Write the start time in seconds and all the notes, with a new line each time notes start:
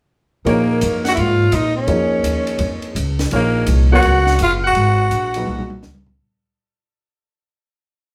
0.45 A#2 F3 A#3 D#4 G#4 A#4 C#5, ride
0.81 F#2, hi-hat pedal, ride
1.04 F#5, snare, ride
1.08 F#4 E5
1.15 G#2 E4 F5, ride
1.21 F4
1.52 A#2 D#4 D#5, hi-hat pedal, ride
1.77 C#4 C#5
1.87 F2 F3 A#3 D#4 G#4 C#5, ride
2.23 D#2, hi-hat pedal, ride
2.47 ride
2.59 F2, ride
2.82 ride
2.95 C#2, hi-hat pedal, ride
3.19 snare, ride
3.31 A#1 A#2 F3 D#4 G#4 A#4 C#5, ride
3.35 A#3
3.66 C2, hi-hat pedal, ride
3.92 F#3 B3 F4 F#4 A#4 C#5 F#5
4.02 C#2, ride
4.26 snare
4.39 F#1, hi-hat pedal, ride
4.43 F4 F5
4.64 F#4 F#5
4.75 G#1, ride
5.10 A#1, hi-hat pedal, ride
5.34 A#2 F#3 D#4 G#4 B4, ride
5.47 B1, mid tom
5.58 mid tom
5.70 mid tom
5.82 C#2, snare, hi-hat pedal
5.95 mid tom
6.06 floor tom